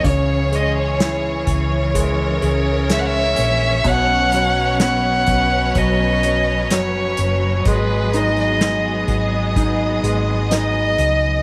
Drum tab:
HH |x-x-x-x-x-x-x-x-|x-x-x-x-x-x-x-x-|x-xxx-x-x-x-x-x-|
SD |----o-------o---|----o-------o---|----o-------o---|
BD |o-----o-o-------|o-----o-o-------|o-----o-o-------|